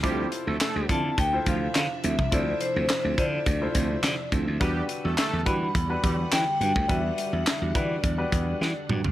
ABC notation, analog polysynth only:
X:1
M:4/4
L:1/16
Q:1/4=105
K:Ddor
V:1 name="Analog polysynth"
[G,G]2 z [A,A] [A,A]2 z4 [F,F] z4 z | z16 | [G,G]2 z [A,A] [A,A]2 z4 [G,G] z4 z | z16 |]